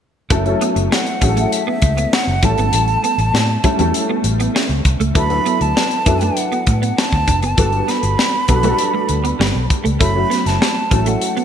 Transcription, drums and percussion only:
0.30 kick loud
0.30 closed hi-hat medium
0.46 closed hi-hat soft
0.61 closed hi-hat medium
0.76 closed hi-hat soft
0.92 snare medium
1.07 closed hi-hat soft
1.21 kick medium
1.21 closed hi-hat medium
1.37 closed hi-hat soft
1.52 closed hi-hat medium
1.82 kick medium
1.82 closed hi-hat medium
1.98 closed hi-hat soft
2.13 snare loud
2.43 kick loud
2.43 closed hi-hat medium
2.58 closed hi-hat soft
2.73 closed hi-hat medium
2.88 closed hi-hat soft
3.04 closed hi-hat medium
3.19 closed hi-hat soft
3.35 snare medium
3.64 kick medium
3.64 closed hi-hat medium
3.79 closed hi-hat soft
3.94 closed hi-hat medium
4.24 closed hi-hat medium
4.40 closed hi-hat soft
4.56 snare medium
4.70 closed hi-hat soft
4.85 kick medium
4.85 closed hi-hat medium
5.01 closed hi-hat soft
5.15 kick loud
5.15 closed hi-hat medium
5.30 closed hi-hat soft
5.46 closed hi-hat medium
5.61 closed hi-hat soft
5.77 snare medium
5.91 closed hi-hat soft
6.06 kick medium
6.06 closed hi-hat medium
6.21 closed hi-hat soft
6.37 closed hi-hat medium
6.52 closed hi-hat soft
6.67 kick medium
6.67 closed hi-hat medium
6.83 closed hi-hat medium
6.98 snare loud
7.13 kick medium
7.28 kick medium
7.28 closed hi-hat medium
7.42 closed hi-hat soft
7.58 kick loud
7.58 closed hi-hat medium
7.72 closed hi-hat soft
7.88 snare soft
7.88 closed hi-hat medium
8.03 closed hi-hat soft
8.19 snare medium
8.48 kick medium
8.48 closed hi-hat medium
8.63 closed hi-hat soft
8.79 closed hi-hat medium
9.09 closed hi-hat medium
9.25 closed hi-hat soft
9.41 snare loud
9.70 kick medium
9.70 closed hi-hat medium
9.85 closed hi-hat soft
10.01 kick loud
10.01 closed hi-hat medium
10.31 snare soft
10.31 closed hi-hat medium
10.46 snare soft
10.46 closed hi-hat soft
10.62 snare medium
10.91 kick medium
10.91 closed hi-hat medium
11.06 closed hi-hat medium
11.21 closed hi-hat medium
11.37 closed hi-hat soft

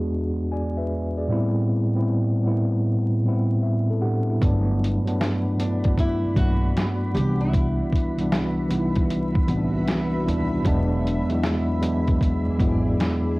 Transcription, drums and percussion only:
4.42 kick loud
4.42 closed hi-hat medium
4.84 closed hi-hat medium
5.07 closed hi-hat soft
5.21 snare loud
5.21 closed hi-hat medium
5.59 closed hi-hat medium
5.84 kick medium
5.84 closed hi-hat soft
5.98 kick medium
5.98 closed hi-hat medium
6.36 kick medium
6.36 closed hi-hat medium
6.77 snare loud
6.77 closed hi-hat medium
7.17 closed hi-hat medium
7.54 kick loud
7.54 closed hi-hat medium
7.93 kick medium
7.93 closed hi-hat medium
8.19 closed hi-hat soft
8.32 snare loud
8.32 closed hi-hat medium
8.70 closed hi-hat medium
8.95 kick medium
8.95 closed hi-hat soft
9.10 closed hi-hat medium
9.35 kick loud
9.48 closed hi-hat medium
9.88 snare loud
9.88 closed hi-hat medium
10.28 closed hi-hat medium
10.65 kick loud
10.65 closed hi-hat medium
11.07 closed hi-hat medium
11.30 closed hi-hat soft
11.44 snare loud
11.44 closed hi-hat medium
11.83 closed hi-hat medium
12.07 kick medium
12.07 closed hi-hat soft
12.21 kick medium
12.21 closed hi-hat medium
12.59 kick medium
12.59 closed hi-hat medium
13.00 snare loud
13.00 closed hi-hat medium

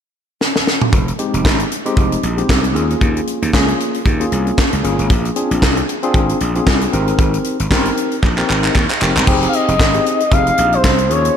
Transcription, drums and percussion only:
0.41 snare medium
0.56 snare medium
0.67 snare medium
0.82 mid tom loud
0.93 kick loud
0.93 closed hi-hat medium
1.08 closed hi-hat soft
1.19 closed hi-hat medium
1.34 closed hi-hat medium
1.45 kick medium
1.45 snare loud
1.45 clap medium
1.60 closed hi-hat medium
1.71 closed hi-hat medium
1.86 closed hi-hat soft
1.97 kick loud
1.97 closed hi-hat medium
2.12 closed hi-hat medium
2.23 closed hi-hat medium
2.38 closed hi-hat soft
2.49 kick loud
2.49 snare loud
2.49 clap medium
2.64 closed hi-hat medium
2.76 closed hi-hat medium
2.90 closed hi-hat soft
3.01 kick loud
3.01 closed hi-hat medium
3.17 closed hi-hat medium
3.27 closed hi-hat medium
3.42 closed hi-hat medium
3.53 kick medium
3.53 snare loud
3.53 clap medium
3.68 closed hi-hat soft
3.80 closed hi-hat medium
3.94 closed hi-hat soft
4.06 kick loud
4.06 closed hi-hat medium
4.21 closed hi-hat medium
4.32 closed hi-hat medium
4.47 closed hi-hat soft
4.58 kick loud
4.58 snare loud
4.58 clap medium
4.73 closed hi-hat medium
4.84 closed hi-hat medium
4.99 closed hi-hat soft
5.10 kick loud
5.10 closed hi-hat medium
5.25 closed hi-hat soft
5.36 closed hi-hat medium
5.51 closed hi-hat medium
5.62 kick medium
5.62 snare loud
5.62 clap medium
5.77 closed hi-hat medium
5.89 closed hi-hat medium
6.03 closed hi-hat soft
6.14 kick loud
6.14 closed hi-hat medium
6.29 closed hi-hat medium
6.40 closed hi-hat medium
6.55 closed hi-hat soft
6.67 kick loud
6.67 snare loud
6.67 clap medium
6.81 closed hi-hat medium
6.93 closed hi-hat medium
7.08 closed hi-hat soft
7.19 kick loud
7.19 closed hi-hat medium
7.34 closed hi-hat soft
7.44 closed hi-hat medium
7.60 closed hi-hat medium
7.71 kick medium
7.71 snare loud
7.71 clap medium
7.85 closed hi-hat medium
7.97 closed hi-hat medium
8.11 closed hi-hat soft
8.23 kick loud
8.23 clap medium
8.38 clap medium
8.50 clap medium
8.64 clap medium
8.75 kick loud
8.75 clap medium
8.90 clap medium
9.02 clap medium
9.17 clap medium
9.27 kick loud
9.27 crash medium
9.42 closed hi-hat medium
9.53 closed hi-hat medium
9.68 closed hi-hat medium
9.80 kick loud
9.80 snare loud
9.80 clap medium
9.94 closed hi-hat medium
10.06 closed hi-hat medium
10.20 closed hi-hat soft
10.32 kick loud
10.32 closed hi-hat medium
10.47 closed hi-hat medium
10.58 closed hi-hat medium
10.72 closed hi-hat soft
10.84 kick loud
10.84 snare loud
10.84 clap loud
10.98 closed hi-hat medium
11.11 closed hi-hat medium
11.25 closed hi-hat medium

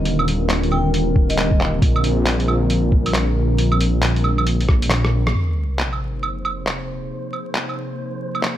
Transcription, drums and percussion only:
0.05 closed hi-hat medium
0.19 claves medium
0.28 closed hi-hat soft
0.50 clap loud
0.50 closed hi-hat soft
0.63 closed hi-hat soft
0.72 claves soft
0.94 closed hi-hat soft
1.16 kick medium
1.30 closed hi-hat soft
1.38 clap loud
1.38 closed hi-hat medium
1.51 kick loud
1.60 clap medium
1.82 kick loud
1.82 closed hi-hat medium
1.96 claves medium
2.04 closed hi-hat medium
2.26 clap medium
2.26 closed hi-hat medium
2.40 closed hi-hat soft
2.48 claves medium
2.70 closed hi-hat medium
2.92 kick medium
3.06 closed hi-hat soft
3.06 claves soft
3.14 clap medium
3.14 closed hi-hat medium
3.58 closed hi-hat medium
3.72 claves medium
3.80 closed hi-hat medium
4.02 clap loud
4.02 closed hi-hat medium
4.16 closed hi-hat soft
4.24 claves medium
4.38 claves medium
4.47 closed hi-hat medium
4.61 closed hi-hat soft
4.69 kick medium
4.69 cross-stick medium
4.82 closed hi-hat medium
4.90 cross-stick medium
4.90 clap loud
4.90 closed hi-hat medium
5.05 cross-stick medium
5.27 cross-stick medium
5.79 clap medium
5.93 claves soft
6.23 claves medium
6.45 claves medium
6.67 clap medium
7.33 claves soft
7.55 clap medium
7.69 claves soft
8.35 claves soft
8.43 clap loud

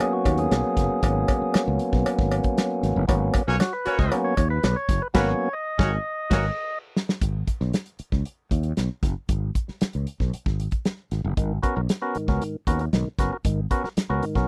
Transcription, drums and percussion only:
0.00 closed hi-hat medium
0.00 cowbell medium
0.25 kick medium
0.25 closed hi-hat medium
0.25 cowbell medium
0.38 closed hi-hat medium
0.51 snare loud
0.51 closed hi-hat medium
0.51 cowbell medium
0.77 kick medium
0.77 snare soft
0.77 closed hi-hat medium
1.03 kick loud
1.03 closed hi-hat medium
1.03 cowbell medium
1.28 kick medium
1.28 closed hi-hat medium
1.28 cowbell medium
1.54 snare loud
1.54 closed hi-hat loud
1.54 cowbell medium
1.79 closed hi-hat medium
1.93 kick medium
1.93 snare soft
2.06 closed hi-hat medium
2.06 cowbell medium
2.19 kick loud
2.19 snare soft
2.31 closed hi-hat medium
2.31 cowbell medium
2.44 kick medium
2.44 closed hi-hat soft
2.58 snare loud
2.58 closed hi-hat medium
2.58 cowbell medium
2.84 snare soft
2.84 closed hi-hat medium
3.09 kick loud
3.09 closed hi-hat loud
3.09 cowbell medium
3.34 kick loud
3.34 closed hi-hat medium
3.34 cowbell medium
3.48 snare soft
3.60 snare loud
3.60 closed hi-hat medium
3.60 cowbell medium
3.86 closed hi-hat medium
3.99 kick medium
3.99 snare soft
4.12 closed hi-hat medium
4.12 cowbell medium
4.37 kick medium
4.37 closed hi-hat medium
4.37 cowbell medium
4.63 snare loud
4.63 closed hi-hat medium
4.63 cowbell medium
4.89 kick loud
4.89 snare soft
4.89 closed hi-hat medium
5.15 kick loud
5.15 snare loud
5.15 crash medium
5.79 kick loud
5.79 snare loud
6.31 kick loud
6.31 snare loud
6.31 crash medium
6.97 snare medium
7.09 snare loud
7.21 kick loud
7.21 closed hi-hat medium
7.47 kick medium
7.47 closed hi-hat medium
7.61 snare soft
7.73 snare loud
7.73 closed hi-hat medium
7.86 closed hi-hat soft
7.99 closed hi-hat medium
8.12 kick medium
8.12 snare soft
8.25 closed hi-hat medium
8.51 kick medium
8.51 closed hi-hat medium
8.63 closed hi-hat soft
8.77 snare medium
8.77 closed hi-hat medium
9.03 kick loud
9.03 snare soft
9.03 closed hi-hat medium
9.29 kick loud
9.29 closed hi-hat medium
9.55 kick medium
9.55 closed hi-hat medium
9.68 snare soft
9.81 snare loud
9.81 closed hi-hat medium
9.93 closed hi-hat soft
10.07 closed hi-hat medium
10.20 kick medium
10.20 snare soft
10.33 closed hi-hat medium
10.46 kick medium
10.46 snare soft
10.60 closed hi-hat medium
10.71 kick medium
10.71 closed hi-hat soft
10.85 snare loud
10.85 closed hi-hat medium
11.11 snare soft
11.11 closed hi-hat medium
11.37 kick loud
11.37 closed hi-hat medium
11.63 kick medium
11.63 closed hi-hat medium
11.89 snare loud
11.89 closed hi-hat loud
12.15 closed hi-hat medium
12.28 kick medium
12.28 snare soft
12.42 closed hi-hat medium
12.67 kick medium
12.67 closed hi-hat medium
12.79 closed hi-hat soft
12.93 snare loud
12.93 closed hi-hat medium
13.19 kick loud
13.19 snare soft
13.19 closed hi-hat medium
13.45 kick loud
13.45 closed hi-hat medium
13.71 kick medium
13.71 closed hi-hat medium
13.84 snare soft
13.97 snare loud
13.97 closed hi-hat medium
14.23 closed hi-hat medium
14.35 kick medium
14.35 snare soft

